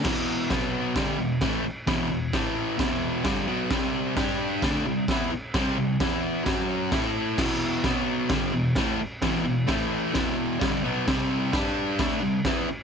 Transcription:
<<
  \new Staff \with { instrumentName = "Distorted electric guitar" } { \clef bass \time 4/4 \key e \minor \tempo 4 = 131 <e, b, e>4 <b, fis b>4 <g, d g>8 <e, b,>8 <a, e a>8 r8 | <e, b, e>8 <e, b,>8 <a, e a>4 <e, b, e>4 <g, d g>8 <b, fis b>8 | <c g c'>4 <g d' g'>4 <d a d'>8 <c g>8 <e b e'>8 r8 | <c g c'>8 <c g>8 <e b e'>4 <fis cis' fis'>4 <a e' a'>4 |
<e, b, e>4 <b, fis b>4 <g, d g>8 <e, b,>8 <a, e a>8 r8 | <e, b, e>8 <e, b,>8 <a, e a>4 <e, b, e>4 <g, d g>8 <b, fis b>8 | <c g c'>4 <g d' g'>4 <d a d'>8 <c g>8 <e b e'>8 r8 | }
  \new DrumStaff \with { instrumentName = "Drums" } \drummode { \time 4/4 <cymc bd sn>4 <cymc bd sn>4 <cymc bd sn>4 <cymc bd sn>4 | <cymc bd sn>4 <cymc bd sn>4 <cymc bd sn>4 <cymc bd sn>4 | <cymc bd sn>4 <cymc bd sn>4 <cymc bd sn>4 <cymc bd sn>4 | <cymc bd sn>4 <cymc bd sn>4 <cymc bd sn>4 <cymc bd sn>4 |
<cymc bd sn>4 <cymc bd sn>4 <cymc bd sn>4 <cymc bd sn>4 | <cymc bd sn>4 <cymc bd sn>4 <cymc bd sn>4 <cymc bd sn>4 | <cymc bd sn>4 <cymc bd sn>4 <cymc bd sn>4 <cymc bd sn>4 | }
>>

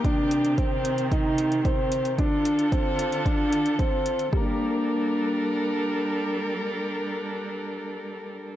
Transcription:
<<
  \new Staff \with { instrumentName = "String quartet" } { \time 4/4 \key g \minor \tempo 4 = 112 <c ees c' g'>1 | <d d' f' a'>1 | <g d' a' bes'>1~ | <g d' a' bes'>1 | }
  \new Staff \with { instrumentName = "Upright piano" } { \time 4/4 \key g \minor d'4 c'4 ees'4 c'4 | d'4 c'4 d'4 c'4 | <g bes d' g'>1~ | <g bes d' g'>1 | }
  \new DrumStaff \with { instrumentName = "Drums" } \drummode { \time 4/4 <hh bd>8 hh16 hh16 <hh bd>8 hh16 hh16 <hh bd>8 hh16 hh16 <hh bd>8 hh16 hh16 | <hh bd>8 hh16 hh16 <hh bd>8 hh16 hh16 <hh bd>8 hh16 hh16 <hh bd>8 hh16 hh16 | bd4 r4 r4 r4 | r4 r4 r4 r4 | }
>>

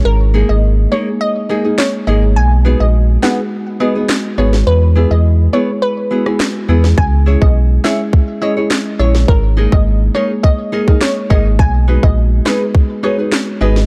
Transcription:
<<
  \new Staff \with { instrumentName = "Synth pluck" } { \time 4/4 \key b \major \tempo 4 = 104 ais'16 r8 dis''16 r8 cis''16 r16 dis''8. r16 cis''16 r16 dis''16 r16 | gis''16 r8 dis''16 r8 fis''16 r8. dis''16 r8. cis''16 r16 | b'16 r8 dis''16 r8 cis''16 r16 b'8. r4 r16 | gis''16 r8 dis''16 r8 e''16 r8. dis''16 r8. cis''16 r16 |
ais'16 r8 dis''16 r8 cis''16 r16 dis''8. r16 cis''16 r16 dis''16 r16 | gis''16 r8 dis''16 r8 b'16 r8. cis''16 r8. dis''16 r16 | }
  \new Staff \with { instrumentName = "Nylon-string guitar" } { \time 4/4 \key b \major r8 <ais dis' gis'>16 r8. <ais dis' gis'>16 r8. <ais dis' gis'>16 <ais dis' gis'>16 r8 <ais dis' gis'>16 r16 | r8 <b dis' gis'>16 r8. <b dis' gis'>16 r8. <b dis' gis'>16 <b dis' gis'>16 r8 <b dis' gis'>16 r16 | r8 <b e' gis'>16 r8. <b e' gis'>16 r8. <b e' gis'>16 <b e' gis'>16 r8 <b e' gis'>16 r16 | r8 <e' gis' cis''>16 r8. <e' gis' cis''>16 r8. <e' gis' cis''>16 <e' gis' cis''>16 r8 <e' gis' cis''>16 r16 |
r8 <dis' gis' ais'>16 r8. <dis' gis' ais'>16 r8. <dis' gis' ais'>16 <dis' gis' ais'>16 r8 <dis' gis' ais'>16 r16 | r8 <dis' gis' b'>16 r8. <dis' gis' b'>16 r8. <dis' gis' b'>16 <dis' gis' b'>16 r8 <dis' gis' b'>16 r16 | }
  \new Staff \with { instrumentName = "Marimba" } { \time 4/4 \key b \major r8 <gis ais dis' gis'>8 r8 <gis ais dis' gis'>8 r8 <gis ais dis' gis'>8 r8 <gis ais dis' gis'>8 | r8 <gis b dis' fis'>8 r8 <gis b dis' fis'>8 r8 <gis b dis' fis'>8 r8 <gis b dis' fis'>8 | r8 <gis b e' gis'>8 r8 <gis b e' gis'>8 r8 <gis b e' fis'>8 r8 <gis b e' gis'>8 | r8 <gis cis' e' gis'>8 r8 <gis cis' e' gis'>8 r8 <gis cis' e' gis'>8 r8 <gis cis' e' gis'>8 |
r8 <gis ais dis' gis'>8 r8 <gis ais dis' gis'>8 r8 <gis ais dis' gis'>8 r8 <gis ais dis' gis'>8 | r8 <gis b dis' fis'>8 r8 <gis b dis' gis'>8 r8 <gis b dis' fis'>8 r8 <gis b dis' fis'>8 | }
  \new Staff \with { instrumentName = "Sub bass" } { \clef bass \time 4/4 \key b \major gis,,8. gis,,8. r2 gis,,8 | b,,8. ais,,8. r2 gis,,8 | e,8. e,8. r2 e,8 | cis,8. b,,8. r2 ais,,8 |
gis,,8. gis,,8. r2 gis,,8 | b,,8. ais,,8. r2 gis,,8 | }
  \new DrumStaff \with { instrumentName = "Drums" } \drummode { \time 4/4 r4 r4 r4 <hc sn>4 | r4 r8 <hc sn>8 r4 <hc sn>8. sn16 | r4 r4 r8. ss16 <hc sn>8. sn16 | bd8. bd16 r8 <hc sn>8 bd4 <hc sn>8. sn16 |
bd8. bd16 r4 bd8. bd16 <hc sn>8 bd8 | bd8. bd16 r8 <hc sn>8 bd4 <hc sn>8. sn16 | }
>>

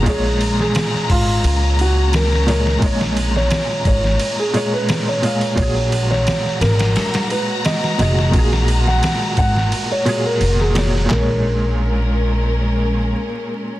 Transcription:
<<
  \new Staff \with { instrumentName = "Felt piano" } { \time 4/4 \key bes \minor \tempo 4 = 87 aes'8. aes'8. f'4 ges'8 bes'8 bes'8 | r8. des''8. des''8. aes'8 ces''8 des''8. | des''8. des''8. bes'4 ces''8 ees''8 ees''8 | r8. ges''8. ges''8. des''8 bes'8 aes'8. |
bes'1 | }
  \new Staff \with { instrumentName = "String section" } { \time 4/4 \key bes \minor <aes des' bes''>1~ | <aes des' bes''>1 | <aes ges' bes''>1~ | <aes ges' bes''>1 |
<aes des' bes'>1 | }
  \new Staff \with { instrumentName = "Felt piano" } { \clef bass \time 4/4 \key bes \minor <bes, aes des''>2.~ <bes, aes des''>8 <bes, aes des''>8 | <bes, aes des''>2~ <bes, aes des''>8 <bes, aes des''>4 <bes, aes f''>8 | <bes, ges aes'>2.~ <bes, ges aes'>8 <bes, ges aes'>8 | <bes, ges aes'>2~ <bes, ges aes'>8 <bes, ges aes'>4 <bes, ges des''>8 |
<bes, aes des''>1 | }
  \new Staff \with { instrumentName = "Upright bass" } { \clef bass \time 4/4 \key bes \minor bes,,4 r8 aes,,8 des,2 | bes,,4 r8 aes,,8 r2 | bes,,4 r8 aes,,8 r4. f,,8 | bes,,4 r8 aes,,8 r4 f,,4 |
bes,,2. r4 | }
  \new DrumStaff \with { instrumentName = "Drums" } \drummode { \time 4/4 <bd cymr>8 cymr16 sn16 <cymr sn>16 sn16 <hho bd>8 cymr8 cymr8 <cymr sn>16 sn16 <cymr sn>16 sn16 | <bd cymr>16 sn16 cymr16 sn16 <cymr sn>8 <bd cymr>16 sn16 cymr8 cymr8 <cymr sn>8 cymr16 cymr16 | <bd cymr>8 cymr16 sn16 <cymr sn>16 sn16 <cymr sn>16 <cymr sn>16 <cymr sn>16 <cymr sn>16 cymr8 <cymr sn>16 sn16 <cymr sn>16 sn16 | <bd cymr>16 sn16 cymr16 sn16 <cymr sn>8 <bd cymr>16 sn16 cymr8 cymr8 cymr16 sn16 <cymr sn>16 sn16 |
<hc sn tomfh>4 r4 r4 r4 | }
>>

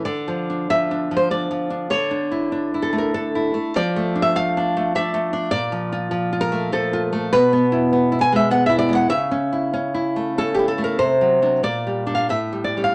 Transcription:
\new Staff \with { instrumentName = "Nylon-string guitar" } { \time 3/4 \key d \minor \tempo 4 = 99 << { d''4 e''8. c''16 d''4 | cis''4. a'16 bes'16 a'4 | d''8. e''16 f''4 e''4 | d''4. bes'8 a'8 r8 |
b'4. gis''16 e''16 fis''16 e''16 d''16 fis''16 | e''2 a'16 g'16 a'16 bes'16 | c''4 d''8. f''16 e''8 d''16 f''16 | } \\ { \tuplet 3/2 { d8 f8 d'8 f8 d'8 f8 d'8 f8 d'8 } | \tuplet 3/2 { d8 d'8 e'8 d'8 e'8 a8 d'8 e'8 a8 } | \tuplet 3/2 { f8 a8 d'8 a8 d'8 a8 d'8 a8 d'8 } | \tuplet 3/2 { bes,8 f8 f'8 f8 f'8 a8 f8 f'8 a8 } |
\tuplet 3/2 { b,8 b8 e'8 b8 e'8 gis8 b8 e'8 gis8 } | \tuplet 3/2 { cis8 cis'8 e'8 cis'8 e'8 a8 cis'8 e'8 a8 } | \tuplet 3/2 { c8 fis8 <fis d'>8 bes,8 g8 <g d'>8 a,8 g8 <g cis'>8 } | } >> }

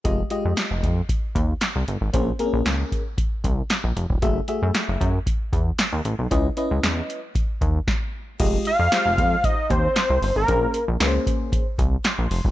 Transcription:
<<
  \new Staff \with { instrumentName = "Analog synth lead" } { \time 4/4 \key f \minor \tempo 4 = 115 r1 | r1 | r1 | r1 |
r8 f''4. ees''8 c''4~ c''16 bes'16~ | bes'8. r2. r16 | }
  \new Staff \with { instrumentName = "FM electric piano" } { \time 4/4 \key f \minor <aes f' g' ees''>8 <aes f' g' ees''>4 r2 r8 | <bes des' aes' c''>8 <bes c' des' aes' bes'>4 r2 r8 | <a ges' aes' fes''>8 <a ges' aes' fes''>4 r2 r8 | <des' fes' ces'' ees''>8 <des' fes' ces'' ees''>4 r2 r8 |
<aes f' g' ees''>8 r8 <aes f' g' c''>4 r2 | <bes des' aes' c''>8 r8 <bes des' aes' b' c''>4 r4 c'''4 | }
  \new Staff \with { instrumentName = "Analog synth bass" } { \clef bass \time 4/4 \key f \minor f,,8 r16 f,16 r16 f,,16 f,8 r8 ees,8 r16 c,16 g,,16 aes,,16 | bes,,8 r16 bes,,16 des,8 r4 c,8 r16 bes,,16 f,,16 ees,,16 | ges,,8 r16 ges,16 r16 ges,,16 ges,8 r8 fes,8 r16 ees,16 a,,16 b,,16 | des,8 r16 des,16 fes,8 r4 ees,8 r4 |
f,,8 r16 f,16 r16 f,,16 f,8 r8 ees,8 r16 c,16 g,,16 aes,,16 | bes,,8 r16 bes,,16 des,8 r4 c,8 r16 bes,,16 f,,16 ees,,16 | }
  \new DrumStaff \with { instrumentName = "Drums" } \drummode { \time 4/4 <hh bd>8 hh8 <hc hh sn>8 <hh bd>8 <hh bd>8 <hh bd>8 <hc hh sn>8 hh8 | <hh bd>8 hh8 <hc hh sn>8 <hh bd>8 <hh bd>8 <hh bd>8 <hc hh sn>8 hh16 bd16 | <hh bd>8 hh8 <hc hh sn>8 <hh bd>8 <hh bd>8 <hh bd>8 <hc hh sn>8 hh8 | <hh bd>8 hh8 <hc hh sn>8 hh8 <hh bd>8 <hh bd>8 <bd sn>4 |
<cymc hh bd>8 hh8 <hc hh sn>8 <hh bd>8 <hh bd>8 <hh bd>8 <hc hh sn>8 hho8 | <hh bd>8 hh8 <hc hh sn>8 <hh bd>8 <hh bd>8 <hh bd>8 <hc hh sn>8 hho16 bd16 | }
>>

